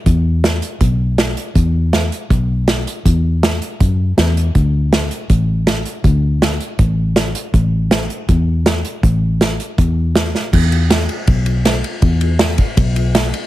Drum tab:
CC |--------|--------|--------|--------|
RD |--------|--------|--------|--------|
HH |x-xxx-xx|x-xxx-xx|x-xxx-xx|x-xxx-xx|
SD |--o---o-|--o---o-|--o---o-|--o---o-|
BD |o---o---|o---o---|o---o---|o---o---|

CC |--------|--------|--------|x-------|
RD |--------|--------|--------|-xxxxxxx|
HH |x-xxx-xx|x-xxx-xx|x-xxx-x-|--------|
SD |--o---o-|--o---o-|--o---oo|--o---o-|
BD |o---o---|o---o---|o---o---|o---o---|

CC |--------|
RD |xxxxxxxx|
HH |--------|
SD |--o---o-|
BD |o--oo---|